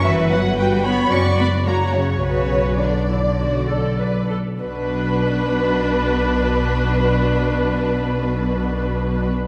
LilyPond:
<<
  \new Staff \with { instrumentName = "Violin section" } { \time 4/4 \key b \minor \tempo 4 = 98 e''8 fis''8 g''8 b''8 cis'''8 b''8 ais''8 cis''8 | cis''4 d''2~ d''8 r8 | b'1~ | b'1 | }
  \new Staff \with { instrumentName = "Violin section" } { \time 4/4 \key b \minor e''8 fis''8 g''8 b''8 cis'''8 b''8 ais''8 cis''8 | cis''4 d''2~ d''8 r8 | b'1~ | b'1 | }
  \new Staff \with { instrumentName = "Viola section" } { \time 4/4 \key b \minor << { b'4 b'8 cis''8 d''4 cis''4 | b'4 d'8 e'8 fis'8 a'8 b'8 a'8 | b'1~ | b'1 | } \\ { fis'4 fis'4 fis'4 fis'4 | fis'4 r2. | d'1~ | d'1 | } >> }
  \new Staff \with { instrumentName = "Cello section" } { \clef bass \time 4/4 \key b \minor e8 fis8 g8 b8 cis'8 b8 ais8 cis8 | cis4 d2~ d8 r8 | b,1~ | b,1 | }
  \new Staff \with { instrumentName = "Double bass section" } { \clef bass \time 4/4 \key b \minor g,,2 fis,,2 | b,,2.~ b,,8 r8 | b,,1~ | b,,1 | }
>>